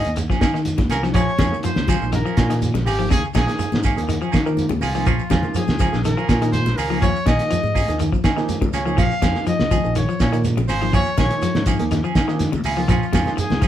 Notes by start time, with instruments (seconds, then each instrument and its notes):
Already playing: trumpet D#5
0.05 fingered electric bass D#2, closed hi-hat, shekere
0.16 muted clean electric guitar stroke, closed hi-hat, high conga, shekere
0.30 clean electric guitar F3 C#4 G#4, kick, snare, shekere
0.41 fingered electric bass D#3, clean electric guitar A#3 C#4 G#4, kick, snare, closed hi-hat, shekere
0.54 clean electric guitar D#3, snare, shekere
0.65 closed hi-hat, high conga, shekere
0.78 fingered electric bass D#2, muted clean electric guitar stroke, kick, snare, high conga, shekere
0.90 fingered electric bass C2, clean electric guitar A#3 C#4 G#4, trumpet A#4, snare, closed hi-hat, low conga, shekere
1.03 clean electric guitar F3, snare, shekere
1.14 fingered electric bass A#1, clean electric guitar F3 A#3 C#4 G#4, trumpet C#5, kick, closed hi-hat, high conga, shekere
1.29 shekere
1.38 fingered electric bass F2, clean electric guitar C#3 F3 A#3 C#4 G#4, kick, snare, closed hi-hat, high conga, shekere
1.52 reed electric piano F3 A#3 D#4 G#4, shekere
1.63 clean electric guitar F3, trumpet C5, muted fingered electric bass stroke, closed hi-hat, high conga, shekere
1.76 fingered electric bass C#2, snare, high conga, shekere
1.88 clean electric guitar F3 A#3 C#4 G#4, kick, closed hi-hat, high conga, low conga, shekere
2.01 fingered electric bass A#1, reed electric piano F3 A#3 D#4 G#4, shekere
2.12 clean electric guitar D#3, trumpet A#4, snare, closed hi-hat, high conga, shekere
2.25 clean electric guitar F3 A#3 C#4 G#4, shekere
2.37 fingered electric bass A#2, clean electric guitar F3 A#3 C#4 G#4, kick, snare, closed hi-hat, shekere
2.49 clean electric guitar D#3, reed electric piano F3 A#3 D#4 G#4, snare, closed hi-hat, shekere
2.62 closed hi-hat, high conga, shekere
2.74 fingered electric bass A#1, clean electric guitar C#3, snare, high conga, shekere
2.86 fingered electric bass G#1, clean electric guitar F3 A#3 C#4 G#4, trumpet G4, open hi-hat, low conga, shekere
2.99 reed electric piano F3 A#3 D#4 F4, clean electric guitar F3, shekere
3.10 fingered electric bass D#2, clean electric guitar C#3 A#3 C#4 G#4, trumpet G#4, kick, snare, closed hi-hat, high conga, shekere
3.24 shekere
3.34 fingered electric bass A#1, clean electric guitar D#3 A#3 C#4 G#4, trumpet G#4, kick, snare, closed hi-hat, high conga, shekere
3.47 reed electric piano F3 A#3 D#4 G#4, snare, closed hi-hat, shekere
3.59 muted clean electric guitar stroke, muted fingered electric bass stroke, closed hi-hat, high conga, shekere
3.72 fingered electric bass G#2, snare, high conga, shekere
3.83 clean electric guitar A#3 C#4 G#4, kick, closed hi-hat, low conga, shekere
3.96 fingered electric bass D#2, reed electric piano F3 A#3 D#4 G#4, closed hi-hat, shekere
4.08 clean electric guitar D#3, closed hi-hat, high conga, shekere
4.21 clean electric guitar F3 C#4 G#4, shekere
4.32 fingered electric bass D#3, clean electric guitar A#3 C#4 G#4, kick, snare, closed hi-hat, shekere
4.46 clean electric guitar D#3, reed electric piano F3 A#3 D#4 A#4, shekere
4.57 closed hi-hat, high conga, shekere
4.69 fingered electric bass D#2, clean electric guitar C#3, high conga, shekere
4.81 fingered electric bass C2, clean electric guitar A#3 C#4 G#4, trumpet F4, open hi-hat, low conga, shekere
4.94 reed electric piano F3 A#3 D#4 G#4, clean electric guitar F3 C#4 G#4, shekere
5.06 fingered electric bass A#1, clean electric guitar F3 A#3 C#4 G#4, kick, closed hi-hat, high conga, shekere
5.19 shekere
5.30 fingered electric bass F2, clean electric guitar C#3 F3 A#3 C#4 G#4, kick, snare, closed hi-hat, high conga, shekere
5.43 reed electric piano F3 A#3 D#4 G#4, low conga, shekere
5.54 clean electric guitar F3, trumpet G#4, muted fingered electric bass stroke, closed hi-hat, high conga, shekere
5.68 fingered electric bass C#2, snare, high conga, shekere
5.79 clean electric guitar F3 A#3 C#4 G#4, kick, closed hi-hat, low conga, shekere
5.92 fingered electric bass A#1, reed electric piano F3 A#3 D#4 G#4, snare, shekere
6.04 clean electric guitar D#3, trumpet A#4, snare, closed hi-hat, high conga, shekere
6.17 clean electric guitar F3 A#3 C#4 G#4, shekere
6.28 fingered electric bass A#2, clean electric guitar F3 A#3 C#4 G#4, kick, snare, closed hi-hat, shekere
6.41 clean electric guitar D#3, reed electric piano F3 A#3 D#4 G#4, snare, closed hi-hat, shekere
6.52 trumpet C5, closed hi-hat, high conga, shekere
6.66 fingered electric bass A#1, snare, high conga, shekere
6.77 fingered electric bass C#2, clean electric guitar F3 A#3 C#4 G#4, trumpet A#4, open hi-hat, low conga, shekere
6.90 clean electric guitar F3 A#3 C#4 G#4, reed electric piano F3 A#3 D#4 G#4, shekere
7.01 fingered electric bass D#2, clean electric guitar F3 A#3 C#4 G#4, trumpet C#5, kick, closed hi-hat, high conga, shekere
7.16 shekere
7.26 fingered electric bass A#1, clean electric guitar D#3 A#3 C#4 G#4, trumpet D#5, kick, snare, closed hi-hat, high conga, shekere
7.39 reed electric piano F3 A#3 D#4 G#4, closed hi-hat, shekere
7.51 clean electric guitar F3, muted fingered electric bass stroke, closed hi-hat, high conga, shekere
7.63 fingered electric bass G#2, high conga, shekere
7.74 clean electric guitar A#3 C#4 G#4, kick, open hi-hat, low conga, shekere
7.88 fingered electric bass D#2, reed electric piano F3 A#3 D#4 G#4, closed hi-hat, shekere
7.99 clean electric guitar D#3, closed hi-hat, high conga, shekere
8.12 clean electric guitar F3, kick, shekere
8.24 fingered electric bass D#3, clean electric guitar A#3 C#4 G#4, kick, snare, closed hi-hat, shekere
8.37 clean electric guitar D#3, reed electric piano F3 A#3 D#4 G#4, snare, shekere
8.49 closed hi-hat, high conga, shekere
8.62 fingered electric bass D#2, clean electric guitar C#3, kick, high conga, shekere
8.73 fingered electric bass C#2, clean electric guitar A#3 C#4 G#4, trumpet C#5, closed hi-hat, low conga, shekere
8.86 clean electric guitar F3 C#4 G#4, reed electric piano F3 A#3 D#4 G#4, shekere
8.97 fingered electric bass A#1, clean electric guitar F3 A#3 C#4 G#4, trumpet F5, kick, snare, closed hi-hat, high conga, shekere
9.11 shekere
9.22 fingered electric bass F2, clean electric guitar C#3 F3 A#3 C#4 G#4, kick, snare, closed hi-hat, high conga, shekere
9.35 reed electric piano F3 A#3 D#4 G#4, snare, shekere
9.47 clean electric guitar F3, trumpet D#5, muted fingered electric bass stroke, closed hi-hat, high conga, shekere
9.59 fingered electric bass C#2, snare, high conga, shekere
9.71 clean electric guitar F3 G#4, kick, closed hi-hat, low conga, shekere
9.84 fingered electric bass A#1, reed electric piano F3 A#3 D#4 G#4, shekere
9.95 clean electric guitar D#3, trumpet C#5, closed hi-hat, high conga, shekere
10.09 clean electric guitar F3, shekere
10.20 fingered electric bass A#2, clean electric guitar F3 A#3 C#4 G#4, kick, snare, closed hi-hat, shekere
10.32 clean electric guitar D#3, reed electric piano F3 A#3 D#4 A#4, closed hi-hat, shekere
10.45 closed hi-hat, high conga, shekere
10.57 fingered electric bass A#1, clean electric guitar C#3, high conga, shekere
10.68 fingered electric bass G#1, clean electric guitar F3 A#3 C#4 G#4, trumpet C5, open hi-hat, low conga, shekere
10.81 clean electric guitar F3, reed electric piano F3 A#3 D#4 G#4, shekere
10.93 fingered electric bass D#2, clean electric guitar F3 A#3 C#4 G#4, trumpet C#5, kick, closed hi-hat, high conga, shekere
11.06 shekere
11.17 fingered electric bass A#1, clean electric guitar D#3 A#3 C#4 G#4, trumpet C#5, kick, snare, closed hi-hat, high conga, shekere
11.30 reed electric piano F3 A#3 D#4 G#4, closed hi-hat, shekere
11.42 clean electric guitar F3, muted fingered electric bass stroke, closed hi-hat, high conga, shekere
11.55 fingered electric bass G#2, snare, high conga, shekere
11.66 clean electric guitar F3 A#3 C#4 G#4, kick, closed hi-hat, low conga, shekere
11.79 fingered electric bass D#2, reed electric piano F3 A#3 D#4 G#4, closed hi-hat, shekere
11.91 clean electric guitar D#3, snare, closed hi-hat, high conga, shekere
12.04 clean electric guitar F3 C#4 G#4, shekere
12.15 fingered electric bass D#3, clean electric guitar A#3 C#4 G#4, kick, snare, closed hi-hat, shekere
12.28 clean electric guitar D#3, reed electric piano F3 A#3 D#4 G#4, snare, shekere
12.39 snare, closed hi-hat, high conga, shekere
12.52 fingered electric bass D#2, clean electric guitar C#3, high conga, shekere
12.64 fingered electric bass C#2, clean electric guitar A#3 C#4 G#4, trumpet F4, open hi-hat, low conga, shekere
12.77 clean electric guitar F3, reed electric piano F3 A#3 D#4 G#4, shekere
12.88 fingered electric bass A#1, clean electric guitar F3 A#3 C#4 G#4, kick, closed hi-hat, high conga, shekere
13.03 shekere
13.13 fingered electric bass F2, clean electric guitar C#3 F3 A#3 C#4 G#4, kick, snare, closed hi-hat, high conga, shekere
13.26 reed electric piano F3 A#3 D#4 G#4, snare, low conga, shekere
13.37 trumpet G#4, muted clean electric guitar stroke, muted fingered electric bass stroke, closed hi-hat, high conga, shekere
13.50 fingered electric bass C#2, snare, high conga, shekere
13.61 clean electric guitar F3 A#3 C#4 G#4, kick, closed hi-hat, high conga, low conga, shekere